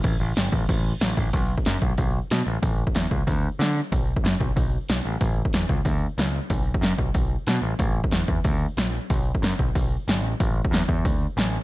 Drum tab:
CC |x---x---x---x---|----------------|----------------|----------------|
HH |----------------|o---o---o---o---|o---o---o---o---|o---o---o---o---|
SD |----o-------o---|----o-------o---|----o-------o---|----o-------o---|
BD |o-----o-o-----o-|o--o--o-o-------|o--o--o-o-------|o--o--o-o-------|

CC |----------------|----------------|----------------|----------------|
HH |o---o---o---o---|o---o---o---o---|o---o---o---o---|o---o---o---o---|
SD |----o-------o---|----o-------o---|----o-------o---|----o-------o---|
BD |o--o--o-o-------|o--o--o-o-------|o--o--o-o-------|o--o--o-o-------|

CC |----------------|
HH |o---o---o---o---|
SD |----o-------o---|
BD |o--o--o-o-------|